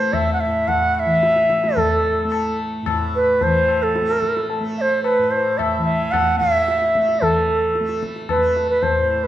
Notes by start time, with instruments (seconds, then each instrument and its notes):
Already playing: tanpura A2 E3 A3, bansuri C5
0.13 bansuri E5, tabla na, tabla ge
0.33 bansuri F#5
0.40 bansuri E5
0.47 tanpura A2
0.68 bansuri F#5, tabla tin, tabla ge
0.95 bansuri F#5
1.00 bansuri E5
1.05 tanpura E3
1.23 tabla te
1.36 tabla te
1.50 tabla ke
1.64 tanpura A3, tabla te
1.77 bansuri A4, tabla tin, tabla ge
2.24 tanpura A3
2.32 tabla na
2.83 tanpura A2, tabla na, tabla ge
3.15 bansuri B4
3.41 tanpura E3, bansuri C5, tabla tin, tabla ge
3.68 tabla na
3.83 bansuri A4
3.96 tabla te
4.01 tanpura A3
4.09 tabla te
4.22 tabla ke
4.37 tabla te
4.50 tabla tin
4.60 tanpura A3
4.78 bansuri C5 E5
5.04 bansuri B4, tabla na
5.19 tanpura A2
5.31 bansuri C5
5.58 bansuri E5, tabla na, tabla ge
5.78 tanpura E3
5.85 bansuri E5
6.12 bansuri F#5, tabla na, tabla ge
6.37 tanpura A3, bansuri E5
6.41 tabla ge
6.68 tabla te
6.82 tabla te
6.95 tanpura A3, tabla ke
7.09 tabla te
7.21 tanpura E3, bansuri A4, tabla tin, tabla ge
7.75 tabla te
7.80 tanpura A3
7.89 tabla te
8.03 tabla ke
8.16 tabla te
8.29 bansuri B4, tabla na, tabla ge
8.38 tanpura A3
8.56 tabla te
8.70 bansuri B4
8.82 bansuri C5, tabla tin, tabla ge
8.97 tanpura A2
9.24 bansuri B4